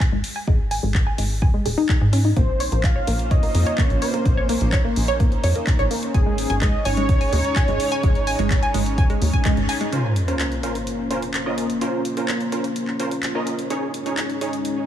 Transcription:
0.00 G#5, kick
0.12 G#1 G#3
0.24 open hi-hat
0.36 G#5
0.47 G#1 G#3, kick
0.71 G#5, open hi-hat
0.83 G#1 G#3
0.94 kick, clap
1.07 G#5
1.18 G#1 G#3, open hi-hat
1.42 G#5, kick
1.54 G#3
1.66 D#1 G#4, open hi-hat
1.78 D#4
1.89 G#4, kick, clap
2.01 G#2 G#4
2.13 C#4, open hi-hat
2.25 D#4
2.37 A#1 A#3 C#4 F4 C5, kick, closed hi-hat
2.60 C#5, open hi-hat
2.72 A#1 A#3, closed hi-hat
2.84 F5, kick, clap, closed hi-hat
2.96 C#5
3.07 A#1 A#3, open hi-hat
3.19 closed hi-hat
3.31 C#5 D#5, kick, closed hi-hat
3.43 A#3, open hi-hat
3.55 F2, open hi-hat
3.67 C#5, closed hi-hat
3.78 A#3 C#5, kick, clap, closed hi-hat
3.90 A#1, closed hi-hat
4.02 C5 C#5, open hi-hat
4.14 A#3, closed hi-hat
4.25 A#1 D#4, kick, closed hi-hat
4.37 C#5
4.49 A#3, open hi-hat
4.61 A#1, closed hi-hat
4.72 C#5, kick, clap, closed hi-hat
4.85 A#3
4.96 A#1, open hi-hat
5.08 C#5, closed hi-hat
5.20 A#3, kick, closed hi-hat
5.32 closed hi-hat
5.44 F2 C#5, open hi-hat
5.55 A#3, closed hi-hat
5.67 kick, clap, closed hi-hat
5.79 A#1 C#5, closed hi-hat
5.91 A#3, open hi-hat
6.03 closed hi-hat
6.14 G#1 G#3 C#4 D#4 G#4 C#5 G#5, kick, closed hi-hat
6.26 G#3
6.38 open hi-hat
6.50 G#1 G#5, closed hi-hat
6.61 G#3 D#5, kick, clap, closed hi-hat
6.85 G#1 C#5 G#5, open hi-hat
6.97 G#3, closed hi-hat
7.09 kick, closed hi-hat
7.21 G#5, open hi-hat
7.33 D#2 G#3, open hi-hat
7.44 closed hi-hat
7.56 G#5, kick, clap, closed hi-hat
7.68 G#1 G#3, closed hi-hat
7.80 open hi-hat
7.92 G#5, closed hi-hat
8.03 G#1 G#3, kick, closed hi-hat
8.15 closed hi-hat
8.27 G#5, open hi-hat
8.39 G#1 G#3, closed hi-hat
8.50 kick, clap, closed hi-hat
8.63 G#5, closed hi-hat
8.74 G#1 G#3, open hi-hat
8.86 closed hi-hat
8.98 G#5, kick, closed hi-hat
9.10 G#3, closed hi-hat
9.22 D#2, open hi-hat
9.33 G#5, kick, closed hi-hat
9.45 G#3, kick, clap, closed hi-hat
9.57 G#1, closed hi-hat
9.69 G#5, open hi-hat
9.81 G#3, closed hi-hat
9.92 A#3 C#4 F4 A#4 C5, closed hi-hat, sub drop
10.16 closed hi-hat
10.28 C#4 F4 A#4 C5, closed hi-hat
10.39 clap, closed hi-hat
10.52 closed hi-hat
10.63 C#4 F4 A#4 C5, closed hi-hat
10.75 closed hi-hat
10.87 closed hi-hat
11.11 C#4 F4 A#4 C5, closed hi-hat
11.22 closed hi-hat
11.34 clap, closed hi-hat
11.46 C#4 F4 A#4 D#5
11.58 closed hi-hat
11.70 closed hi-hat
11.81 C#4 F4 A#4 C5, closed hi-hat
12.05 closed hi-hat
12.17 C#4 F4 A#4 C5, closed hi-hat
12.28 clap, closed hi-hat
12.41 closed hi-hat
12.52 C#4 F4 A#4 C5, closed hi-hat
12.64 closed hi-hat
12.76 closed hi-hat
12.88 clap
13.00 C#4 F4 A#4 C5, closed hi-hat
13.11 closed hi-hat
13.23 clap, closed hi-hat
13.35 C#4 F4 A#4 D#5
13.47 closed hi-hat
13.59 closed hi-hat
13.70 G#3 C#4 D#4 G#4 C#5, closed hi-hat
13.94 closed hi-hat
14.06 C#4 D#4 G#4 C#5, closed hi-hat
14.17 clap, closed hi-hat
14.30 closed hi-hat
14.41 C#4 D#4 G#4 C#5, closed hi-hat
14.53 closed hi-hat
14.65 closed hi-hat

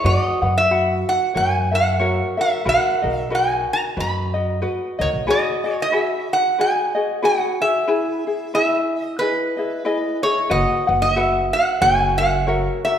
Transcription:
0.04 F#2 F#4 B4 D5 D#5 F#5
0.23 D#5
0.42 F#2 F#4 B4 F#5
0.58 E5
0.71 F#4 B4 F#5
1.09 F#5
1.34 F#2 F#4 A#4 C#5 E5 G#5
1.71 F#4 A#4 E5 F#5
1.99 F#4 A#4 C#5 E5
2.37 F#4 A#4 E5
2.65 B1 F#4 A#4 B4 D#5 F#5
3.02 B1 F#4 A#4 D#5
3.19 E5
3.30 F#4 A#4 B4 D#5
3.35 G#5
3.73 A#5
3.96 F#2 F#4 B4 D#5 B5
4.34 F#4 D#5
4.62 F#4 B4 D#5
4.99 C#2 F#4 A#4 C#5 D#5
5.13 B1
5.27 F#4 G#4 B4 D#5
5.64 F#4 G#4 D#5
5.82 D#5
5.92 F#4 G#4 B4 E5
6.33 F#5
6.58 F#4 G#4 B4 D#5 G#5
6.95 F#4 G#4 D#5
7.22 F#4 G#4 B4 D#5 F#5
7.61 F#4 G#4 E5
7.88 E4 G#4 B4
8.27 E4 G#4
8.54 E4 G#4 B4 E5
9.03 D#5
9.19 E4 G#4 B4 D#5
9.57 E4 G#4 D#5
9.85 E4 G#4 B4 D#5
10.22 E4 G#4 C#5 D#5
10.50 F#1 F#4 B4 D#5 F#5
10.87 F#1 F#4 B4 F#5
11.02 D#5
11.13 F#4 B4 E5
11.17 F#5
11.53 F#5
11.81 F#1 F#4 A#4 C#5 E5 G#5
12.18 F#4 A#4 E5 F#5
12.47 F#4 A#4 C#5 E5
12.85 F#4 A#4 E5

